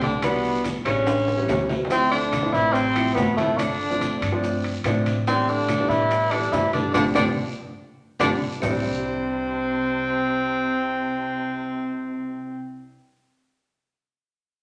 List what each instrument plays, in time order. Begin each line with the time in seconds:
Already playing: upright bass C2
0.01 baritone saxophone D3, tenor saxophone D4, high conga, high timbale, short guiro, maracas
0.22 baritone saxophone B2, grand piano E3 G3 B3 D4, tenor saxophone B3, high bongo, high conga, high timbale, long guiro, claves, maracas
0.44 high conga, maracas
0.64 high bongo, high conga, high timbale, short guiro, maracas
0.85 upright bass A1, baritone saxophone C#3, grand piano E3 G3 B3 D4, tenor saxophone C#4, high bongo, high conga, high timbale, short guiro, claves, maracas
1.06 high bongo, high conga, high timbale, long guiro, maracas
1.28 high bongo, high conga, high timbale, maracas
1.37 grand piano E3 G3 B3 C#4
1.48 upright bass D2, high bongo, low bongo, high conga, low timbale, short guiro, claves, maracas
1.69 high bongo, high conga, low timbale, short guiro, maracas
1.85 low bongo
1.90 baritone saxophone C3, grand piano F3 A3 C4 E4, tenor saxophone C4, high bongo, high conga, high timbale, long guiro, maracas
2.11 baritone saxophone D3, tenor saxophone D4, high conga, maracas
2.32 high bongo, high conga, high timbale, short guiro, claves, maracas
2.42 grand piano F3 A3 C4 E4
2.53 upright bass A1, baritone saxophone E3, tenor saxophone E4, high conga, short guiro, maracas
2.73 baritone saxophone C3, tenor saxophone C4, high bongo, high conga, high timbale, long guiro, maracas
2.95 grand piano F3 A3 C4 E4, high conga, high timbale, claves, maracas
3.15 upright bass G1, baritone saxophone B2, tenor saxophone B3, high bongo, low bongo, high conga, low timbale, short guiro, maracas
3.37 baritone saxophone A2, grand piano F3 A3 C4 E4, tenor saxophone A3, high conga, high timbale, short guiro, maracas
3.58 baritone saxophone D3, tenor saxophone D4, high bongo, high conga, high timbale, long guiro, claves, maracas
3.80 high conga, maracas
3.90 grand piano F3 A3 C4 D4
4.01 high bongo, high conga, high timbale, short guiro, maracas
4.22 upright bass G2, high bongo, high conga, high timbale, short guiro, claves, maracas
4.32 grand piano F3 A3 C4 D4
4.43 high bongo, high conga, long guiro, maracas
4.64 high bongo, high conga, high timbale, maracas
4.84 upright bass A2, grand piano F3 A3 C4 D4, high bongo, low bongo, high conga, high timbale, short guiro, claves, maracas
5.06 high bongo, high conga, high timbale, short guiro, maracas
5.27 baritone saxophone C3, grand piano E3 G3 B3 D4, tenor saxophone C4, high bongo, high conga, high timbale, long guiro, maracas
5.48 baritone saxophone D3, tenor saxophone D4, high conga, maracas
5.68 high bongo, high conga, high timbale, short guiro, claves, maracas
5.79 grand piano E3 G3 B3 D4
5.89 upright bass A2, baritone saxophone E3, tenor saxophone E4, high conga, short guiro, maracas
6.11 high bongo, high conga, high timbale, long guiro, maracas
6.31 baritone saxophone D3, grand piano E3 G3 B3 D4, tenor saxophone D4, high conga, high timbale, claves, maracas
6.52 upright bass G2, baritone saxophone E3, tenor saxophone E4, high bongo, low bongo, high conga, low timbale, short guiro, maracas
6.73 baritone saxophone D3, grand piano E3 G3 B3 D4, tenor saxophone D4, high conga, high timbale, short guiro, maracas
6.94 upright bass G1, baritone saxophone D3, grand piano F3 G3 C4, tenor saxophone D4, high bongo, high conga, high timbale, long guiro, claves, maracas
7.15 upright bass G1, baritone saxophone D3, grand piano F3 G3 C4, tenor saxophone D4, high bongo, high conga, high timbale, long guiro, claves, maracas
8.20 upright bass G1, baritone saxophone D3, grand piano F3 G3 C4, tenor saxophone D4, high bongo, high conga, high timbale, long guiro, claves, maracas
8.60 upright bass C2, baritone saxophone C3, grand piano E3 G3 B4, tenor saxophone C4, low bongo, low conga, low timbale, long guiro, claves, maracas
8.64 grand piano D4